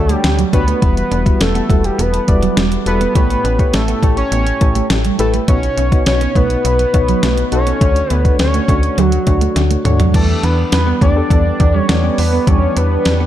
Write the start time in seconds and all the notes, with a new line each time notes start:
Already playing: D2 D3 A3 D4 F#4 A4 C#5
0.09 A3, closed hi-hat
0.13 G4
0.24 D2, snare, closed hi-hat
0.38 F#3, closed hi-hat
0.53 D2 A3 D4 F#4 B4 C#5, muted clean electric guitar stroke, kick, closed hi-hat
0.68 A3, closed hi-hat
0.82 E1 E3 G3 E4 F#4 B4, kick, closed hi-hat
0.97 muted clean electric guitar stroke, closed hi-hat
1.11 E1 D4, closed hi-hat
1.25 G3 E4 F#4 B4, kick, closed hi-hat
1.40 E1 A4, muted clean electric guitar stroke, snare, closed hi-hat
1.55 B3, closed hi-hat
1.69 E1 G3 A3 E4 F#4 A4, kick, closed hi-hat
1.84 G4, closed hi-hat
1.98 E1 B3 B4, closed hi-hat
2.13 muted clean electric guitar stroke, closed hi-hat
2.27 E1 G3 E4 F#4 D5, kick, closed hi-hat
2.43 F#3, closed hi-hat
2.57 E1 G3, snare, closed hi-hat
2.72 muted clean electric guitar stroke, closed hi-hat
2.86 E1 G3 E4 F#4 A4 B4, closed hi-hat
3.01 B3, closed hi-hat
3.15 A1 A2 A3 E4 G4 B4 C#5, kick, closed hi-hat
3.30 muted clean electric guitar stroke, closed hi-hat
3.44 A1 C#4, closed hi-hat
3.59 A3 E4 G4 C#5, kick, closed hi-hat
3.73 A1 A4, muted clean electric guitar stroke, snare, closed hi-hat
3.88 B3, closed hi-hat
4.03 A1 A3 E4 G4 C#5, kick, closed hi-hat
4.17 C#5, closed hi-hat
4.32 A1 B3 C#5, closed hi-hat
4.46 muted clean electric guitar stroke, closed hi-hat
4.61 A1 A3 E4 G4 A4, kick, closed hi-hat
4.75 A3, closed hi-hat
4.90 A1, snare, closed hi-hat
5.05 G3, closed hi-hat
5.19 A1 A3 E4 G4 A4 B4, muted clean electric guitar stroke, closed hi-hat
5.34 A3, closed hi-hat
5.48 B1 B2 B3 D#4 F#4 C#5, kick, closed hi-hat
5.63 muted clean electric guitar stroke, closed hi-hat
5.77 B1 C#4, closed hi-hat
5.91 B3 D#4 F#4 C#5, kick, closed hi-hat
6.06 B1 C#5, muted clean electric guitar stroke, snare, closed hi-hat
6.21 B3, closed hi-hat
6.35 B1 A3 B3 D#4 F#4 B4 C#5, kick, closed hi-hat
6.50 closed hi-hat
6.65 B1 B3, closed hi-hat
6.79 muted clean electric guitar stroke, closed hi-hat
6.93 B1 B3 D#4 F#4 C#5, kick, closed hi-hat
7.08 F#3, closed hi-hat
7.23 B1 A3, snare, closed hi-hat
7.38 muted clean electric guitar stroke, closed hi-hat
7.51 B1 B3 D#4 F#4 A4 C#5, closed hi-hat
7.67 B3, closed hi-hat
7.81 D2 D3 A3 D4 F#4 C#5, kick, closed hi-hat
7.96 muted clean electric guitar stroke, closed hi-hat
8.10 D2 B3 B4, closed hi-hat
8.24 A3 D4 F#4 C#5, kick, closed hi-hat
8.39 D2 C#5, muted clean electric guitar stroke, snare, closed hi-hat
8.54 A3, closed hi-hat
8.68 D2 A3 D4 F#4 C#5, kick, closed hi-hat
8.83 closed hi-hat
8.98 D2 F#3 F#4, closed hi-hat
9.12 muted clean electric guitar stroke, closed hi-hat
9.26 D2 A3 D4 F#4 C#5, kick, closed hi-hat
9.41 A3, closed hi-hat
9.56 D2, snare, closed hi-hat
9.71 A3, closed hi-hat
9.84 D2 A3 D4 F#4 C#5, muted clean electric guitar stroke, closed hi-hat, mid tom
9.99 F#3, closed hi-hat, floor tom
10.14 E2 E3 G3 B3 D4 G4 A4 D5, kick, closed hi-hat, crash
10.29 muted clean electric guitar stroke
10.43 E2 D4 B4, closed hi-hat
10.72 E2 B4, muted clean electric guitar stroke, snare, closed hi-hat
10.87 B3
11.01 E2 A3 B3 D4 G4 D5, kick, closed hi-hat
11.16 B3 D4 G4 A4
11.30 E2 B3, kick, closed hi-hat
11.45 muted clean electric guitar stroke
11.59 E2 B3 D4 G4 D5, kick, closed hi-hat
11.74 G3 C#5
11.89 E2 A3, snare, closed hi-hat
12.03 B3 D4 G4 D5, muted clean electric guitar stroke
12.18 E2 B4, open hi-hat
12.33 B3
12.47 E2 E3 G3 B3 D4 G4 C#5 D5, kick, closed hi-hat
12.62 muted clean electric guitar stroke
12.77 E2 D4 B4, closed hi-hat
13.05 E2, muted clean electric guitar stroke, snare, closed hi-hat
13.20 B3